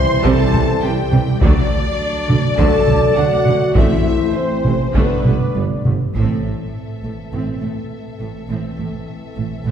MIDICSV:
0, 0, Header, 1, 12, 480
1, 0, Start_track
1, 0, Tempo, 584795
1, 1161, Time_signature, 4, 2, 24, 8
1, 3084, Tempo, 597610
1, 5484, Tempo, 582524
1, 7929, End_track
2, 0, Start_track
2, 0, Title_t, "Violin section"
2, 0, Program_c, 0, 48
2, 0, Note_on_c, 0, 84, 114
2, 178, Note_off_c, 0, 84, 0
2, 190, Note_on_c, 0, 81, 104
2, 672, Note_on_c, 0, 79, 90
2, 675, Note_off_c, 0, 81, 0
2, 1151, Note_on_c, 0, 74, 109
2, 1157, Note_off_c, 0, 79, 0
2, 2097, Note_off_c, 0, 74, 0
2, 2122, Note_on_c, 0, 81, 107
2, 2596, Note_on_c, 0, 78, 93
2, 2600, Note_off_c, 0, 81, 0
2, 3078, Note_on_c, 0, 76, 84
2, 3081, Note_off_c, 0, 78, 0
2, 3547, Note_off_c, 0, 76, 0
2, 3552, Note_on_c, 0, 72, 76
2, 4036, Note_on_c, 0, 71, 71
2, 4038, Note_off_c, 0, 72, 0
2, 4524, Note_off_c, 0, 71, 0
2, 5009, Note_on_c, 0, 76, 55
2, 7929, Note_off_c, 0, 76, 0
2, 7929, End_track
3, 0, Start_track
3, 0, Title_t, "Violin section"
3, 0, Program_c, 1, 48
3, 0, Note_on_c, 1, 84, 119
3, 190, Note_on_c, 1, 81, 118
3, 200, Note_off_c, 1, 84, 0
3, 675, Note_off_c, 1, 81, 0
3, 676, Note_on_c, 1, 79, 89
3, 1159, Note_off_c, 1, 79, 0
3, 1161, Note_on_c, 1, 74, 112
3, 2102, Note_off_c, 1, 74, 0
3, 2118, Note_on_c, 1, 81, 105
3, 2595, Note_on_c, 1, 78, 98
3, 2599, Note_off_c, 1, 81, 0
3, 3081, Note_off_c, 1, 78, 0
3, 3089, Note_on_c, 1, 76, 94
3, 3553, Note_off_c, 1, 76, 0
3, 3556, Note_on_c, 1, 72, 86
3, 4037, Note_on_c, 1, 71, 71
3, 4040, Note_off_c, 1, 72, 0
3, 4525, Note_off_c, 1, 71, 0
3, 5009, Note_on_c, 1, 69, 49
3, 7929, Note_off_c, 1, 69, 0
3, 7929, End_track
4, 0, Start_track
4, 0, Title_t, "Trumpet section"
4, 0, Program_c, 2, 61
4, 0, Note_on_c, 2, 72, 95
4, 1021, Note_off_c, 2, 72, 0
4, 1161, Note_on_c, 2, 74, 96
4, 3050, Note_off_c, 2, 74, 0
4, 3081, Note_on_c, 2, 72, 80
4, 4009, Note_off_c, 2, 72, 0
4, 4046, Note_on_c, 2, 74, 64
4, 4739, Note_off_c, 2, 74, 0
4, 7929, End_track
5, 0, Start_track
5, 0, Title_t, "French horn section"
5, 0, Program_c, 3, 60
5, 0, Note_on_c, 3, 72, 127
5, 182, Note_off_c, 3, 72, 0
5, 207, Note_on_c, 3, 69, 122
5, 681, Note_on_c, 3, 67, 105
5, 683, Note_off_c, 3, 69, 0
5, 1158, Note_on_c, 3, 62, 115
5, 1161, Note_off_c, 3, 67, 0
5, 1970, Note_off_c, 3, 62, 0
5, 2110, Note_on_c, 3, 69, 127
5, 2585, Note_off_c, 3, 69, 0
5, 2592, Note_on_c, 3, 66, 113
5, 3075, Note_on_c, 3, 64, 109
5, 3079, Note_off_c, 3, 66, 0
5, 3546, Note_off_c, 3, 64, 0
5, 3561, Note_on_c, 3, 60, 100
5, 4041, Note_on_c, 3, 59, 104
5, 4042, Note_off_c, 3, 60, 0
5, 4526, Note_off_c, 3, 59, 0
5, 5011, Note_on_c, 3, 52, 58
5, 5016, Note_on_c, 3, 60, 52
5, 7929, Note_off_c, 3, 52, 0
5, 7929, Note_off_c, 3, 60, 0
5, 7929, End_track
6, 0, Start_track
6, 0, Title_t, "Viola section"
6, 0, Program_c, 4, 48
6, 203, Note_on_c, 4, 60, 103
6, 204, Note_on_c, 4, 55, 95
6, 425, Note_off_c, 4, 60, 0
6, 426, Note_off_c, 4, 55, 0
6, 444, Note_on_c, 4, 48, 77
6, 444, Note_on_c, 4, 52, 78
6, 510, Note_off_c, 4, 48, 0
6, 510, Note_off_c, 4, 52, 0
6, 689, Note_on_c, 4, 52, 78
6, 692, Note_on_c, 4, 55, 79
6, 754, Note_off_c, 4, 52, 0
6, 758, Note_off_c, 4, 55, 0
6, 923, Note_on_c, 4, 48, 83
6, 925, Note_on_c, 4, 52, 76
6, 988, Note_off_c, 4, 48, 0
6, 991, Note_off_c, 4, 52, 0
6, 1169, Note_on_c, 4, 54, 105
6, 1170, Note_on_c, 4, 57, 94
6, 1389, Note_off_c, 4, 54, 0
6, 1389, Note_off_c, 4, 57, 0
6, 1886, Note_on_c, 4, 50, 68
6, 1888, Note_off_c, 4, 50, 0
6, 1888, Note_on_c, 4, 50, 65
6, 1954, Note_off_c, 4, 50, 0
6, 2114, Note_on_c, 4, 57, 98
6, 2115, Note_on_c, 4, 54, 98
6, 2339, Note_off_c, 4, 57, 0
6, 2340, Note_off_c, 4, 54, 0
6, 2359, Note_on_c, 4, 50, 71
6, 2361, Note_off_c, 4, 50, 0
6, 2361, Note_on_c, 4, 50, 88
6, 2426, Note_off_c, 4, 50, 0
6, 2598, Note_on_c, 4, 54, 76
6, 2599, Note_on_c, 4, 50, 73
6, 2664, Note_off_c, 4, 54, 0
6, 2665, Note_off_c, 4, 50, 0
6, 2837, Note_on_c, 4, 50, 85
6, 2903, Note_off_c, 4, 50, 0
6, 3086, Note_on_c, 4, 57, 96
6, 3086, Note_on_c, 4, 60, 88
6, 3306, Note_off_c, 4, 57, 0
6, 3306, Note_off_c, 4, 60, 0
6, 3799, Note_on_c, 4, 52, 66
6, 3802, Note_on_c, 4, 48, 66
6, 3863, Note_off_c, 4, 52, 0
6, 3866, Note_off_c, 4, 48, 0
6, 4044, Note_on_c, 4, 62, 86
6, 4045, Note_on_c, 4, 57, 99
6, 4269, Note_off_c, 4, 62, 0
6, 4270, Note_off_c, 4, 57, 0
6, 4284, Note_on_c, 4, 50, 65
6, 4286, Note_on_c, 4, 57, 63
6, 4348, Note_off_c, 4, 50, 0
6, 4350, Note_off_c, 4, 57, 0
6, 4530, Note_on_c, 4, 55, 62
6, 4533, Note_on_c, 4, 59, 70
6, 4595, Note_off_c, 4, 55, 0
6, 4597, Note_off_c, 4, 59, 0
6, 4771, Note_on_c, 4, 57, 65
6, 4773, Note_on_c, 4, 50, 67
6, 4835, Note_off_c, 4, 57, 0
6, 4837, Note_off_c, 4, 50, 0
6, 5015, Note_on_c, 4, 60, 62
6, 5232, Note_off_c, 4, 60, 0
6, 5253, Note_on_c, 4, 57, 30
6, 5317, Note_off_c, 4, 57, 0
6, 5722, Note_on_c, 4, 57, 36
6, 5788, Note_off_c, 4, 57, 0
6, 5966, Note_on_c, 4, 60, 52
6, 6190, Note_off_c, 4, 60, 0
6, 6199, Note_on_c, 4, 57, 40
6, 6265, Note_off_c, 4, 57, 0
6, 6680, Note_on_c, 4, 57, 41
6, 6746, Note_off_c, 4, 57, 0
6, 6924, Note_on_c, 4, 60, 46
6, 7147, Note_off_c, 4, 60, 0
6, 7161, Note_on_c, 4, 57, 41
6, 7227, Note_off_c, 4, 57, 0
6, 7638, Note_on_c, 4, 57, 36
6, 7703, Note_off_c, 4, 57, 0
6, 7886, Note_on_c, 4, 60, 57
6, 7929, Note_off_c, 4, 60, 0
6, 7929, End_track
7, 0, Start_track
7, 0, Title_t, "Trombone section"
7, 0, Program_c, 5, 61
7, 0, Note_on_c, 5, 52, 102
7, 0, Note_on_c, 5, 55, 83
7, 1128, Note_off_c, 5, 52, 0
7, 1130, Note_off_c, 5, 55, 0
7, 1162, Note_on_c, 5, 54, 91
7, 1163, Note_on_c, 5, 57, 87
7, 3051, Note_off_c, 5, 54, 0
7, 3079, Note_on_c, 5, 52, 79
7, 3916, Note_off_c, 5, 52, 0
7, 4053, Note_on_c, 5, 50, 75
7, 4738, Note_off_c, 5, 57, 0
7, 4743, Note_off_c, 5, 50, 0
7, 7929, End_track
8, 0, Start_track
8, 0, Title_t, "Cello section"
8, 0, Program_c, 6, 48
8, 201, Note_on_c, 6, 48, 94
8, 266, Note_off_c, 6, 48, 0
8, 446, Note_on_c, 6, 48, 68
8, 511, Note_off_c, 6, 48, 0
8, 678, Note_on_c, 6, 48, 77
8, 744, Note_off_c, 6, 48, 0
8, 922, Note_on_c, 6, 48, 65
8, 987, Note_off_c, 6, 48, 0
8, 1161, Note_on_c, 6, 50, 86
8, 1226, Note_off_c, 6, 50, 0
8, 1875, Note_on_c, 6, 50, 71
8, 1941, Note_off_c, 6, 50, 0
8, 2121, Note_on_c, 6, 50, 91
8, 2186, Note_off_c, 6, 50, 0
8, 2360, Note_on_c, 6, 50, 65
8, 2425, Note_off_c, 6, 50, 0
8, 2602, Note_on_c, 6, 50, 71
8, 2668, Note_off_c, 6, 50, 0
8, 2844, Note_on_c, 6, 50, 62
8, 2909, Note_off_c, 6, 50, 0
8, 3088, Note_on_c, 6, 45, 91
8, 3153, Note_off_c, 6, 45, 0
8, 3794, Note_on_c, 6, 45, 58
8, 3858, Note_off_c, 6, 45, 0
8, 4033, Note_on_c, 6, 43, 70
8, 4097, Note_off_c, 6, 43, 0
8, 4284, Note_on_c, 6, 43, 57
8, 4348, Note_off_c, 6, 43, 0
8, 4529, Note_on_c, 6, 43, 65
8, 4593, Note_off_c, 6, 43, 0
8, 4763, Note_on_c, 6, 43, 57
8, 4827, Note_off_c, 6, 43, 0
8, 5001, Note_on_c, 6, 45, 71
8, 5225, Note_off_c, 6, 45, 0
8, 5245, Note_on_c, 6, 45, 38
8, 5309, Note_off_c, 6, 45, 0
8, 5729, Note_on_c, 6, 45, 35
8, 5795, Note_off_c, 6, 45, 0
8, 5964, Note_on_c, 6, 45, 50
8, 6030, Note_off_c, 6, 45, 0
8, 6207, Note_on_c, 6, 45, 38
8, 6273, Note_off_c, 6, 45, 0
8, 6684, Note_on_c, 6, 45, 35
8, 6750, Note_off_c, 6, 45, 0
8, 6919, Note_on_c, 6, 45, 59
8, 6985, Note_off_c, 6, 45, 0
8, 7167, Note_on_c, 6, 45, 39
8, 7232, Note_off_c, 6, 45, 0
8, 7642, Note_on_c, 6, 45, 38
8, 7708, Note_off_c, 6, 45, 0
8, 7875, Note_on_c, 6, 45, 52
8, 7929, Note_off_c, 6, 45, 0
8, 7929, End_track
9, 0, Start_track
9, 0, Title_t, "Timpani"
9, 0, Program_c, 7, 47
9, 3084, Note_on_c, 7, 45, 85
9, 3768, Note_off_c, 7, 45, 0
9, 7929, End_track
10, 0, Start_track
10, 0, Title_t, "Tuba"
10, 0, Program_c, 8, 58
10, 199, Note_on_c, 8, 36, 104
10, 295, Note_off_c, 8, 36, 0
10, 443, Note_on_c, 8, 36, 66
10, 538, Note_off_c, 8, 36, 0
10, 681, Note_on_c, 8, 36, 72
10, 776, Note_off_c, 8, 36, 0
10, 921, Note_on_c, 8, 36, 74
10, 1017, Note_off_c, 8, 36, 0
10, 1159, Note_on_c, 8, 38, 95
10, 1256, Note_off_c, 8, 38, 0
10, 1882, Note_on_c, 8, 38, 71
10, 1978, Note_off_c, 8, 38, 0
10, 2118, Note_on_c, 8, 38, 100
10, 2215, Note_off_c, 8, 38, 0
10, 2356, Note_on_c, 8, 38, 63
10, 2452, Note_off_c, 8, 38, 0
10, 2604, Note_on_c, 8, 38, 71
10, 2700, Note_off_c, 8, 38, 0
10, 2836, Note_on_c, 8, 38, 72
10, 2934, Note_off_c, 8, 38, 0
10, 3075, Note_on_c, 8, 33, 80
10, 3172, Note_off_c, 8, 33, 0
10, 3794, Note_on_c, 8, 33, 60
10, 3892, Note_off_c, 8, 33, 0
10, 4035, Note_on_c, 8, 31, 77
10, 4133, Note_off_c, 8, 31, 0
10, 4277, Note_on_c, 8, 31, 56
10, 4375, Note_off_c, 8, 31, 0
10, 4520, Note_on_c, 8, 31, 61
10, 4618, Note_off_c, 8, 31, 0
10, 4759, Note_on_c, 8, 31, 57
10, 4857, Note_off_c, 8, 31, 0
10, 7929, End_track
11, 0, Start_track
11, 0, Title_t, "Double bass section"
11, 0, Program_c, 10, 48
11, 205, Note_on_c, 10, 36, 99
11, 271, Note_off_c, 10, 36, 0
11, 446, Note_on_c, 10, 36, 70
11, 512, Note_off_c, 10, 36, 0
11, 679, Note_on_c, 10, 36, 67
11, 744, Note_off_c, 10, 36, 0
11, 921, Note_on_c, 10, 36, 73
11, 987, Note_off_c, 10, 36, 0
11, 1159, Note_on_c, 10, 38, 90
11, 1225, Note_off_c, 10, 38, 0
11, 1885, Note_on_c, 10, 38, 78
11, 1951, Note_off_c, 10, 38, 0
11, 2122, Note_on_c, 10, 38, 112
11, 2188, Note_off_c, 10, 38, 0
11, 2360, Note_on_c, 10, 38, 71
11, 2426, Note_off_c, 10, 38, 0
11, 2599, Note_on_c, 10, 38, 72
11, 2665, Note_off_c, 10, 38, 0
11, 2840, Note_on_c, 10, 38, 68
11, 2906, Note_off_c, 10, 38, 0
11, 3083, Note_on_c, 10, 33, 74
11, 3147, Note_off_c, 10, 33, 0
11, 3803, Note_on_c, 10, 33, 68
11, 3867, Note_off_c, 10, 33, 0
11, 4047, Note_on_c, 10, 31, 83
11, 4111, Note_off_c, 10, 31, 0
11, 4283, Note_on_c, 10, 31, 59
11, 4348, Note_off_c, 10, 31, 0
11, 4532, Note_on_c, 10, 31, 56
11, 4596, Note_off_c, 10, 31, 0
11, 4774, Note_on_c, 10, 31, 66
11, 4838, Note_off_c, 10, 31, 0
11, 5012, Note_on_c, 10, 33, 65
11, 5231, Note_off_c, 10, 33, 0
11, 5248, Note_on_c, 10, 33, 37
11, 5313, Note_off_c, 10, 33, 0
11, 5722, Note_on_c, 10, 33, 39
11, 5788, Note_off_c, 10, 33, 0
11, 5963, Note_on_c, 10, 33, 54
11, 6029, Note_off_c, 10, 33, 0
11, 6208, Note_on_c, 10, 33, 34
11, 6274, Note_off_c, 10, 33, 0
11, 6681, Note_on_c, 10, 33, 34
11, 6747, Note_off_c, 10, 33, 0
11, 6917, Note_on_c, 10, 33, 48
11, 6983, Note_off_c, 10, 33, 0
11, 7163, Note_on_c, 10, 33, 39
11, 7229, Note_off_c, 10, 33, 0
11, 7640, Note_on_c, 10, 33, 48
11, 7706, Note_off_c, 10, 33, 0
11, 7877, Note_on_c, 10, 33, 61
11, 7929, Note_off_c, 10, 33, 0
11, 7929, End_track
12, 0, Start_track
12, 0, Title_t, "Taiko and cinematic ensemble drums"
12, 204, Note_on_c, 9, 41, 86
12, 286, Note_off_c, 9, 41, 0
12, 445, Note_on_c, 9, 47, 67
12, 527, Note_off_c, 9, 47, 0
12, 922, Note_on_c, 9, 47, 55
12, 1004, Note_off_c, 9, 47, 0
12, 1160, Note_on_c, 9, 41, 105
12, 1242, Note_off_c, 9, 41, 0
12, 1885, Note_on_c, 9, 47, 58
12, 1967, Note_off_c, 9, 47, 0
12, 2122, Note_on_c, 9, 41, 73
12, 2204, Note_off_c, 9, 41, 0
12, 2357, Note_on_c, 9, 47, 60
12, 2439, Note_off_c, 9, 47, 0
12, 2839, Note_on_c, 9, 47, 52
12, 2921, Note_off_c, 9, 47, 0
12, 3080, Note_on_c, 9, 41, 97
12, 3161, Note_off_c, 9, 41, 0
12, 3797, Note_on_c, 9, 47, 54
12, 3878, Note_off_c, 9, 47, 0
12, 4038, Note_on_c, 9, 41, 74
12, 4118, Note_off_c, 9, 41, 0
12, 4282, Note_on_c, 9, 47, 59
12, 4362, Note_off_c, 9, 47, 0
12, 4766, Note_on_c, 9, 47, 61
12, 4847, Note_off_c, 9, 47, 0
12, 5007, Note_on_c, 9, 41, 42
12, 5088, Note_off_c, 9, 41, 0
12, 7929, End_track
0, 0, End_of_file